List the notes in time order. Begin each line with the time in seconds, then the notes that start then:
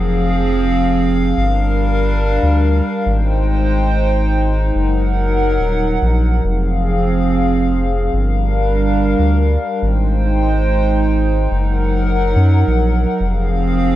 Already playing: F1 F3 C4 G#4 F5
1.37 G1 G3 D4 A#4
2.43 D2
3.06 G#1 G#3 D#4 C5 G5
4.75 F#1 F#3 A#4 F#5
5.60 D#1
6.02 A#1
6.44 F1 F3 C4 G#4 F5
8.13 G1 G3 D4 A#4 F5
9.19 D2
9.82 G#1 G#3 D#4 C5 G5
11.51 F#1 F#3 A#4 F#5
12.36 F#2
12.68 A#1
13.20 F1 F3 C4 G#4 F5